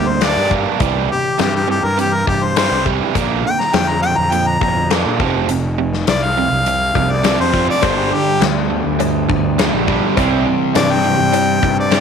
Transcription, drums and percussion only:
0.21 snare, closed hi-hat
0.51 kick
0.80 kick, closed hi-hat
1.39 snare, closed hi-hat
1.99 closed hi-hat
2.27 kick
2.56 snare, closed hi-hat
2.86 kick
3.15 kick, closed hi-hat
3.60 snare
3.74 snare, closed hi-hat
4.32 closed hi-hat
4.61 kick
4.91 snare, closed hi-hat
5.20 kick
5.49 closed hi-hat
5.93 snare
6.07 snare, closed hi-hat
6.66 closed hi-hat
6.95 kick
7.24 snare, closed hi-hat
7.54 kick
7.82 kick, closed hi-hat, cowbell
8.42 snare, closed hi-hat, cowbell
9.00 closed hi-hat, cowbell
9.30 kick
9.59 snare, closed hi-hat, cowbell
9.88 kick
10.17 kick, closed hi-hat, cowbell
10.75 snare, closed hi-hat, cowbell
11.34 closed hi-hat, cowbell
11.63 kick
11.92 snare, closed hi-hat, cowbell

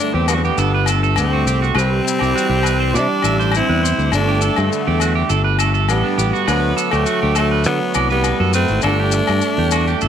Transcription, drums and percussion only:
0.00 maracas
0.28 low agogo, maracas
0.45 maracas
0.58 maracas
0.86 low agogo, maracas
1.04 maracas
1.16 low agogo, maracas
1.47 maracas
1.63 maracas
1.75 low agogo, maracas
2.08 maracas
2.19 low agogo
2.23 maracas
2.38 maracas
2.63 low agogo, maracas
2.96 maracas
3.22 low agogo, maracas
3.41 maracas
3.52 low agogo, maracas
3.85 maracas
3.99 maracas
4.12 low agogo, maracas
4.41 maracas
4.56 low agogo, maracas
4.72 maracas
5.00 low agogo, maracas
5.30 maracas
5.59 low agogo, maracas
5.74 maracas
5.89 low agogo, maracas
6.19 maracas
6.35 maracas
6.48 low agogo, maracas
6.78 maracas
6.91 low agogo, maracas
7.06 maracas
7.35 low agogo, maracas
7.64 maracas
7.94 low agogo, maracas
8.10 maracas
8.24 low agogo, maracas
8.53 maracas
8.68 maracas
8.82 low agogo, maracas
9.12 maracas
9.27 low agogo, maracas
9.41 maracas
9.71 low agogo, maracas
9.88 maracas
10.01 maracas

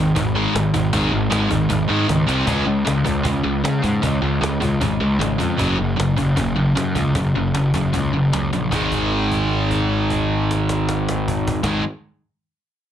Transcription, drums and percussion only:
0.16 cajon bass
0.56 cajon slap
0.74 cajon bass
0.93 cajon bass
1.32 cajon slap
1.51 cajon bass
1.70 cajon bass, cajon slap
2.09 cajon slap
2.29 cajon slap
2.47 cajon bass
2.87 cajon slap
3.06 cajon bass
3.25 cajon bass
3.65 cajon slap
3.84 cajon bass
4.03 cajon bass
4.43 cajon slap
4.62 cajon bass
4.81 cajon bass
5.21 cajon slap
5.40 cajon bass
5.59 cajon bass
6.00 cajon slap
6.18 cajon bass
6.37 cajon bass
6.77 cajon slap
6.96 cajon bass
7.15 cajon bass
7.55 cajon slap
7.74 cajon bass
7.94 cajon bass
8.33 cajon slap
8.53 cajon slap
8.72 cajon bass
8.92 cajon bass
9.31 cajon bass
9.71 cajon bass
10.10 cajon bass
10.51 cajon slap
10.69 cajon slap
10.89 cajon slap
11.09 cajon slap
11.28 cajon bass
11.48 cajon bass
11.64 cajon bass, cajon slap

